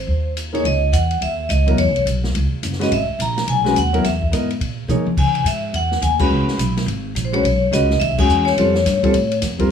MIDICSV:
0, 0, Header, 1, 6, 480
1, 0, Start_track
1, 0, Tempo, 283019
1, 1101, Time_signature, 4, 2, 24, 8
1, 16472, End_track
2, 0, Start_track
2, 0, Title_t, "Vibraphone"
2, 0, Program_c, 0, 11
2, 0, Note_on_c, 0, 72, 72
2, 570, Note_off_c, 0, 72, 0
2, 951, Note_on_c, 0, 73, 73
2, 1122, Note_off_c, 0, 73, 0
2, 1125, Note_on_c, 0, 75, 88
2, 1579, Note_on_c, 0, 78, 98
2, 1606, Note_off_c, 0, 75, 0
2, 2073, Note_off_c, 0, 78, 0
2, 2074, Note_on_c, 0, 76, 95
2, 2513, Note_off_c, 0, 76, 0
2, 2529, Note_on_c, 0, 75, 79
2, 3027, Note_off_c, 0, 75, 0
2, 3030, Note_on_c, 0, 73, 76
2, 3470, Note_off_c, 0, 73, 0
2, 4785, Note_on_c, 0, 75, 81
2, 4956, Note_off_c, 0, 75, 0
2, 4972, Note_on_c, 0, 76, 90
2, 5401, Note_off_c, 0, 76, 0
2, 5456, Note_on_c, 0, 82, 101
2, 5924, Note_on_c, 0, 80, 102
2, 5928, Note_off_c, 0, 82, 0
2, 6403, Note_off_c, 0, 80, 0
2, 6412, Note_on_c, 0, 78, 92
2, 6841, Note_off_c, 0, 78, 0
2, 6865, Note_on_c, 0, 76, 75
2, 7306, Note_off_c, 0, 76, 0
2, 8796, Note_on_c, 0, 80, 82
2, 9232, Note_off_c, 0, 80, 0
2, 9275, Note_on_c, 0, 76, 84
2, 9712, Note_off_c, 0, 76, 0
2, 9763, Note_on_c, 0, 78, 94
2, 10215, Note_on_c, 0, 80, 97
2, 10243, Note_off_c, 0, 78, 0
2, 10492, Note_off_c, 0, 80, 0
2, 10521, Note_on_c, 0, 83, 98
2, 11411, Note_off_c, 0, 83, 0
2, 12293, Note_on_c, 0, 72, 66
2, 12438, Note_off_c, 0, 72, 0
2, 12440, Note_on_c, 0, 73, 85
2, 13053, Note_off_c, 0, 73, 0
2, 13107, Note_on_c, 0, 75, 98
2, 13564, Note_on_c, 0, 76, 102
2, 13596, Note_off_c, 0, 75, 0
2, 13848, Note_off_c, 0, 76, 0
2, 13906, Note_on_c, 0, 80, 108
2, 14334, Note_on_c, 0, 73, 84
2, 14339, Note_off_c, 0, 80, 0
2, 15902, Note_off_c, 0, 73, 0
2, 16472, End_track
3, 0, Start_track
3, 0, Title_t, "Grand piano"
3, 0, Program_c, 1, 0
3, 893, Note_on_c, 1, 58, 59
3, 906, Note_on_c, 1, 63, 56
3, 909, Note_on_c, 1, 68, 57
3, 922, Note_on_c, 1, 73, 73
3, 1069, Note_off_c, 1, 58, 0
3, 1076, Note_off_c, 1, 63, 0
3, 1078, Note_off_c, 1, 68, 0
3, 1084, Note_off_c, 1, 73, 0
3, 2826, Note_on_c, 1, 54, 62
3, 2827, Note_on_c, 1, 59, 58
3, 2842, Note_on_c, 1, 64, 59
3, 2852, Note_on_c, 1, 70, 68
3, 2994, Note_off_c, 1, 54, 0
3, 2995, Note_off_c, 1, 59, 0
3, 3002, Note_off_c, 1, 64, 0
3, 3007, Note_off_c, 1, 70, 0
3, 4733, Note_on_c, 1, 56, 64
3, 4737, Note_on_c, 1, 61, 61
3, 4747, Note_on_c, 1, 66, 61
3, 4755, Note_on_c, 1, 71, 70
3, 4907, Note_off_c, 1, 56, 0
3, 4909, Note_off_c, 1, 61, 0
3, 4913, Note_off_c, 1, 66, 0
3, 4918, Note_off_c, 1, 71, 0
3, 6179, Note_on_c, 1, 56, 77
3, 6183, Note_on_c, 1, 61, 70
3, 6198, Note_on_c, 1, 66, 70
3, 6211, Note_on_c, 1, 71, 86
3, 6349, Note_off_c, 1, 56, 0
3, 6351, Note_off_c, 1, 61, 0
3, 6359, Note_off_c, 1, 66, 0
3, 6365, Note_off_c, 1, 71, 0
3, 6664, Note_on_c, 1, 54, 70
3, 6673, Note_on_c, 1, 59, 65
3, 6680, Note_on_c, 1, 64, 70
3, 6691, Note_on_c, 1, 70, 80
3, 6831, Note_off_c, 1, 54, 0
3, 6836, Note_off_c, 1, 59, 0
3, 6839, Note_off_c, 1, 64, 0
3, 6845, Note_off_c, 1, 70, 0
3, 7318, Note_on_c, 1, 59, 54
3, 7332, Note_on_c, 1, 64, 50
3, 7344, Note_on_c, 1, 70, 51
3, 7347, Note_on_c, 1, 75, 63
3, 7594, Note_off_c, 1, 59, 0
3, 7601, Note_off_c, 1, 64, 0
3, 7607, Note_off_c, 1, 70, 0
3, 7609, Note_off_c, 1, 75, 0
3, 8288, Note_on_c, 1, 58, 57
3, 8303, Note_on_c, 1, 63, 54
3, 8306, Note_on_c, 1, 68, 53
3, 8325, Note_on_c, 1, 73, 62
3, 8559, Note_off_c, 1, 58, 0
3, 8567, Note_off_c, 1, 63, 0
3, 8568, Note_off_c, 1, 68, 0
3, 8578, Note_off_c, 1, 73, 0
3, 10497, Note_on_c, 1, 56, 72
3, 10513, Note_on_c, 1, 61, 69
3, 10515, Note_on_c, 1, 66, 68
3, 10526, Note_on_c, 1, 71, 85
3, 11131, Note_off_c, 1, 56, 0
3, 11139, Note_off_c, 1, 61, 0
3, 11140, Note_off_c, 1, 66, 0
3, 11145, Note_off_c, 1, 71, 0
3, 12416, Note_on_c, 1, 56, 62
3, 12425, Note_on_c, 1, 61, 59
3, 12433, Note_on_c, 1, 66, 60
3, 12445, Note_on_c, 1, 71, 71
3, 12589, Note_off_c, 1, 56, 0
3, 12594, Note_off_c, 1, 61, 0
3, 12597, Note_off_c, 1, 66, 0
3, 12604, Note_off_c, 1, 71, 0
3, 13082, Note_on_c, 1, 56, 68
3, 13082, Note_on_c, 1, 61, 64
3, 13106, Note_on_c, 1, 66, 59
3, 13107, Note_on_c, 1, 71, 76
3, 13358, Note_off_c, 1, 56, 0
3, 13358, Note_off_c, 1, 61, 0
3, 13370, Note_off_c, 1, 66, 0
3, 13371, Note_off_c, 1, 71, 0
3, 13870, Note_on_c, 1, 56, 78
3, 13879, Note_on_c, 1, 61, 69
3, 13891, Note_on_c, 1, 66, 67
3, 13899, Note_on_c, 1, 68, 81
3, 14499, Note_off_c, 1, 56, 0
3, 14504, Note_off_c, 1, 61, 0
3, 14510, Note_off_c, 1, 66, 0
3, 14514, Note_off_c, 1, 68, 0
3, 14543, Note_on_c, 1, 55, 62
3, 14552, Note_on_c, 1, 60, 58
3, 14561, Note_on_c, 1, 65, 61
3, 14576, Note_on_c, 1, 69, 71
3, 14810, Note_off_c, 1, 55, 0
3, 14814, Note_off_c, 1, 60, 0
3, 14819, Note_off_c, 1, 65, 0
3, 14826, Note_off_c, 1, 69, 0
3, 15310, Note_on_c, 1, 55, 72
3, 15322, Note_on_c, 1, 60, 65
3, 15323, Note_on_c, 1, 65, 63
3, 15337, Note_on_c, 1, 69, 78
3, 15478, Note_off_c, 1, 55, 0
3, 15484, Note_off_c, 1, 60, 0
3, 15484, Note_off_c, 1, 65, 0
3, 15491, Note_off_c, 1, 69, 0
3, 16257, Note_on_c, 1, 55, 69
3, 16272, Note_on_c, 1, 60, 64
3, 16278, Note_on_c, 1, 65, 59
3, 16283, Note_on_c, 1, 70, 75
3, 16472, Note_off_c, 1, 55, 0
3, 16472, Note_off_c, 1, 60, 0
3, 16472, Note_off_c, 1, 65, 0
3, 16472, Note_off_c, 1, 70, 0
3, 16472, End_track
4, 0, Start_track
4, 0, Title_t, "Upright bass"
4, 0, Program_c, 2, 32
4, 119, Note_on_c, 2, 39, 83
4, 1041, Note_off_c, 2, 39, 0
4, 1082, Note_on_c, 2, 37, 87
4, 1556, Note_off_c, 2, 37, 0
4, 1563, Note_on_c, 2, 40, 89
4, 2036, Note_off_c, 2, 40, 0
4, 2056, Note_on_c, 2, 39, 89
4, 2522, Note_off_c, 2, 39, 0
4, 2529, Note_on_c, 2, 37, 84
4, 2998, Note_off_c, 2, 37, 0
4, 3011, Note_on_c, 2, 40, 90
4, 3178, Note_off_c, 2, 40, 0
4, 3178, Note_on_c, 2, 37, 55
4, 3329, Note_off_c, 2, 37, 0
4, 3339, Note_on_c, 2, 35, 67
4, 3478, Note_off_c, 2, 35, 0
4, 3488, Note_on_c, 2, 35, 89
4, 3957, Note_off_c, 2, 35, 0
4, 3982, Note_on_c, 2, 37, 87
4, 4256, Note_off_c, 2, 37, 0
4, 4457, Note_on_c, 2, 30, 89
4, 4921, Note_off_c, 2, 30, 0
4, 4937, Note_on_c, 2, 32, 84
4, 5213, Note_off_c, 2, 32, 0
4, 5405, Note_on_c, 2, 34, 88
4, 5875, Note_off_c, 2, 34, 0
4, 5894, Note_on_c, 2, 35, 86
4, 6356, Note_off_c, 2, 35, 0
4, 6366, Note_on_c, 2, 39, 92
4, 6835, Note_off_c, 2, 39, 0
4, 6853, Note_on_c, 2, 40, 86
4, 7319, Note_off_c, 2, 40, 0
4, 7328, Note_on_c, 2, 44, 83
4, 7796, Note_off_c, 2, 44, 0
4, 7805, Note_on_c, 2, 46, 82
4, 8270, Note_off_c, 2, 46, 0
4, 8280, Note_on_c, 2, 47, 92
4, 8564, Note_off_c, 2, 47, 0
4, 8767, Note_on_c, 2, 49, 86
4, 9223, Note_off_c, 2, 49, 0
4, 9234, Note_on_c, 2, 44, 91
4, 9709, Note_off_c, 2, 44, 0
4, 9722, Note_on_c, 2, 40, 84
4, 10194, Note_off_c, 2, 40, 0
4, 10202, Note_on_c, 2, 39, 92
4, 10674, Note_off_c, 2, 39, 0
4, 10682, Note_on_c, 2, 37, 89
4, 10966, Note_off_c, 2, 37, 0
4, 11155, Note_on_c, 2, 35, 85
4, 11631, Note_off_c, 2, 35, 0
4, 11639, Note_on_c, 2, 32, 95
4, 12113, Note_off_c, 2, 32, 0
4, 12128, Note_on_c, 2, 34, 94
4, 12598, Note_off_c, 2, 34, 0
4, 12608, Note_on_c, 2, 35, 86
4, 13078, Note_off_c, 2, 35, 0
4, 13094, Note_on_c, 2, 37, 93
4, 13558, Note_off_c, 2, 37, 0
4, 13568, Note_on_c, 2, 39, 88
4, 13737, Note_off_c, 2, 39, 0
4, 13737, Note_on_c, 2, 35, 57
4, 13893, Note_off_c, 2, 35, 0
4, 13903, Note_on_c, 2, 32, 66
4, 14039, Note_off_c, 2, 32, 0
4, 14049, Note_on_c, 2, 40, 90
4, 14520, Note_off_c, 2, 40, 0
4, 14534, Note_on_c, 2, 41, 91
4, 15002, Note_off_c, 2, 41, 0
4, 15013, Note_on_c, 2, 43, 89
4, 15294, Note_off_c, 2, 43, 0
4, 15494, Note_on_c, 2, 45, 84
4, 15958, Note_off_c, 2, 45, 0
4, 15969, Note_on_c, 2, 41, 87
4, 16435, Note_off_c, 2, 41, 0
4, 16472, End_track
5, 0, Start_track
5, 0, Title_t, "Muted upright bass strokes"
5, 4271, Note_on_c, 9, 29, 43
5, 4440, Note_off_c, 9, 29, 0
5, 5232, Note_on_c, 9, 29, 39
5, 5402, Note_off_c, 9, 29, 0
5, 8576, Note_on_c, 9, 29, 38
5, 8746, Note_off_c, 9, 29, 0
5, 15315, Note_on_c, 9, 29, 39
5, 15484, Note_off_c, 9, 29, 0
5, 16472, End_track
6, 0, Start_track
6, 0, Title_t, "Drums"
6, 621, Note_on_c, 9, 44, 56
6, 621, Note_on_c, 9, 51, 68
6, 791, Note_off_c, 9, 44, 0
6, 791, Note_off_c, 9, 51, 0
6, 925, Note_on_c, 9, 51, 44
6, 1095, Note_off_c, 9, 51, 0
6, 1103, Note_on_c, 9, 51, 62
6, 1272, Note_off_c, 9, 51, 0
6, 1582, Note_on_c, 9, 44, 64
6, 1582, Note_on_c, 9, 51, 71
6, 1751, Note_off_c, 9, 44, 0
6, 1751, Note_off_c, 9, 51, 0
6, 1876, Note_on_c, 9, 51, 49
6, 2045, Note_off_c, 9, 51, 0
6, 2063, Note_on_c, 9, 51, 63
6, 2232, Note_off_c, 9, 51, 0
6, 2539, Note_on_c, 9, 44, 53
6, 2539, Note_on_c, 9, 51, 70
6, 2709, Note_off_c, 9, 44, 0
6, 2709, Note_off_c, 9, 51, 0
6, 2841, Note_on_c, 9, 51, 44
6, 3011, Note_off_c, 9, 51, 0
6, 3019, Note_on_c, 9, 51, 67
6, 3189, Note_off_c, 9, 51, 0
6, 3320, Note_on_c, 9, 51, 49
6, 3490, Note_off_c, 9, 51, 0
6, 3505, Note_on_c, 9, 44, 63
6, 3505, Note_on_c, 9, 51, 69
6, 3674, Note_off_c, 9, 44, 0
6, 3674, Note_off_c, 9, 51, 0
6, 3797, Note_on_c, 9, 38, 50
6, 3967, Note_off_c, 9, 38, 0
6, 3982, Note_on_c, 9, 51, 67
6, 4151, Note_off_c, 9, 51, 0
6, 4459, Note_on_c, 9, 44, 67
6, 4459, Note_on_c, 9, 51, 70
6, 4620, Note_on_c, 9, 38, 30
6, 4628, Note_off_c, 9, 44, 0
6, 4628, Note_off_c, 9, 51, 0
6, 4767, Note_on_c, 9, 51, 46
6, 4782, Note_off_c, 9, 38, 0
6, 4782, Note_on_c, 9, 38, 48
6, 4937, Note_off_c, 9, 51, 0
6, 4946, Note_on_c, 9, 51, 70
6, 4951, Note_off_c, 9, 38, 0
6, 5115, Note_off_c, 9, 51, 0
6, 5422, Note_on_c, 9, 44, 51
6, 5422, Note_on_c, 9, 51, 72
6, 5591, Note_off_c, 9, 44, 0
6, 5591, Note_off_c, 9, 51, 0
6, 5721, Note_on_c, 9, 38, 58
6, 5725, Note_on_c, 9, 51, 51
6, 5891, Note_off_c, 9, 38, 0
6, 5894, Note_off_c, 9, 51, 0
6, 5895, Note_on_c, 9, 51, 71
6, 6065, Note_off_c, 9, 51, 0
6, 6192, Note_on_c, 9, 38, 48
6, 6362, Note_off_c, 9, 38, 0
6, 6377, Note_on_c, 9, 44, 59
6, 6377, Note_on_c, 9, 51, 67
6, 6547, Note_off_c, 9, 44, 0
6, 6547, Note_off_c, 9, 51, 0
6, 6680, Note_on_c, 9, 51, 46
6, 6849, Note_off_c, 9, 51, 0
6, 6855, Note_on_c, 9, 38, 43
6, 6858, Note_on_c, 9, 51, 62
6, 7024, Note_off_c, 9, 38, 0
6, 7028, Note_off_c, 9, 51, 0
6, 7155, Note_on_c, 9, 36, 56
6, 7325, Note_off_c, 9, 36, 0
6, 7341, Note_on_c, 9, 44, 54
6, 7341, Note_on_c, 9, 51, 75
6, 7510, Note_off_c, 9, 44, 0
6, 7510, Note_off_c, 9, 51, 0
6, 7640, Note_on_c, 9, 51, 49
6, 7809, Note_off_c, 9, 51, 0
6, 7820, Note_on_c, 9, 51, 67
6, 7990, Note_off_c, 9, 51, 0
6, 8290, Note_on_c, 9, 47, 50
6, 8294, Note_on_c, 9, 44, 55
6, 8460, Note_off_c, 9, 47, 0
6, 8463, Note_off_c, 9, 44, 0
6, 8587, Note_on_c, 9, 47, 67
6, 8757, Note_off_c, 9, 47, 0
6, 8773, Note_on_c, 9, 36, 78
6, 8775, Note_on_c, 9, 49, 77
6, 8942, Note_off_c, 9, 36, 0
6, 8944, Note_off_c, 9, 49, 0
6, 9072, Note_on_c, 9, 51, 48
6, 9241, Note_off_c, 9, 51, 0
6, 9258, Note_on_c, 9, 44, 58
6, 9258, Note_on_c, 9, 51, 77
6, 9428, Note_off_c, 9, 44, 0
6, 9428, Note_off_c, 9, 51, 0
6, 9733, Note_on_c, 9, 51, 64
6, 9903, Note_off_c, 9, 51, 0
6, 10033, Note_on_c, 9, 38, 42
6, 10202, Note_off_c, 9, 38, 0
6, 10215, Note_on_c, 9, 44, 55
6, 10215, Note_on_c, 9, 51, 69
6, 10385, Note_off_c, 9, 44, 0
6, 10385, Note_off_c, 9, 51, 0
6, 10504, Note_on_c, 9, 49, 78
6, 10509, Note_on_c, 9, 36, 86
6, 10674, Note_off_c, 9, 49, 0
6, 10679, Note_off_c, 9, 36, 0
6, 10989, Note_on_c, 9, 38, 47
6, 11158, Note_off_c, 9, 38, 0
6, 11179, Note_on_c, 9, 44, 68
6, 11179, Note_on_c, 9, 51, 72
6, 11349, Note_off_c, 9, 44, 0
6, 11349, Note_off_c, 9, 51, 0
6, 11484, Note_on_c, 9, 38, 58
6, 11488, Note_on_c, 9, 51, 50
6, 11654, Note_off_c, 9, 38, 0
6, 11657, Note_off_c, 9, 51, 0
6, 11669, Note_on_c, 9, 51, 64
6, 11839, Note_off_c, 9, 51, 0
6, 12144, Note_on_c, 9, 44, 68
6, 12144, Note_on_c, 9, 51, 78
6, 12314, Note_off_c, 9, 44, 0
6, 12314, Note_off_c, 9, 51, 0
6, 12444, Note_on_c, 9, 51, 49
6, 12614, Note_off_c, 9, 51, 0
6, 12633, Note_on_c, 9, 51, 64
6, 12802, Note_off_c, 9, 51, 0
6, 13113, Note_on_c, 9, 44, 64
6, 13113, Note_on_c, 9, 51, 73
6, 13283, Note_off_c, 9, 44, 0
6, 13283, Note_off_c, 9, 51, 0
6, 13405, Note_on_c, 9, 38, 43
6, 13575, Note_off_c, 9, 38, 0
6, 13588, Note_on_c, 9, 51, 66
6, 13758, Note_off_c, 9, 51, 0
6, 13880, Note_on_c, 9, 49, 86
6, 13883, Note_on_c, 9, 36, 97
6, 14049, Note_off_c, 9, 49, 0
6, 14052, Note_off_c, 9, 36, 0
6, 14059, Note_on_c, 9, 44, 66
6, 14229, Note_off_c, 9, 44, 0
6, 14355, Note_on_c, 9, 38, 39
6, 14524, Note_off_c, 9, 38, 0
6, 14545, Note_on_c, 9, 51, 69
6, 14715, Note_off_c, 9, 51, 0
6, 14836, Note_on_c, 9, 38, 52
6, 15005, Note_off_c, 9, 38, 0
6, 15021, Note_on_c, 9, 38, 42
6, 15024, Note_on_c, 9, 44, 65
6, 15024, Note_on_c, 9, 51, 77
6, 15190, Note_off_c, 9, 38, 0
6, 15194, Note_off_c, 9, 44, 0
6, 15194, Note_off_c, 9, 51, 0
6, 15318, Note_on_c, 9, 36, 63
6, 15324, Note_on_c, 9, 51, 51
6, 15488, Note_off_c, 9, 36, 0
6, 15494, Note_off_c, 9, 51, 0
6, 15498, Note_on_c, 9, 51, 70
6, 15668, Note_off_c, 9, 51, 0
6, 15798, Note_on_c, 9, 51, 54
6, 15967, Note_off_c, 9, 51, 0
6, 15967, Note_on_c, 9, 38, 37
6, 15971, Note_on_c, 9, 44, 63
6, 15971, Note_on_c, 9, 51, 80
6, 16137, Note_off_c, 9, 38, 0
6, 16140, Note_off_c, 9, 44, 0
6, 16140, Note_off_c, 9, 51, 0
6, 16270, Note_on_c, 9, 36, 61
6, 16270, Note_on_c, 9, 51, 49
6, 16439, Note_off_c, 9, 36, 0
6, 16440, Note_off_c, 9, 51, 0
6, 16472, End_track
0, 0, End_of_file